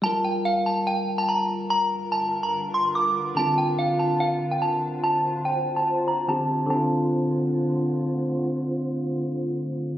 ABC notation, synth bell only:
X:1
M:4/4
L:1/16
Q:1/4=144
K:Dm
V:1 name="Synth bell"
a2 g2 f2 a2 g3 a b2 z2 | b4 a3 b z2 c'2 d'4 | a2 g2 f2 a2 f3 g a2 z2 | a4 g3 a z2 b2 a4 |
a12 z4 | z16 |]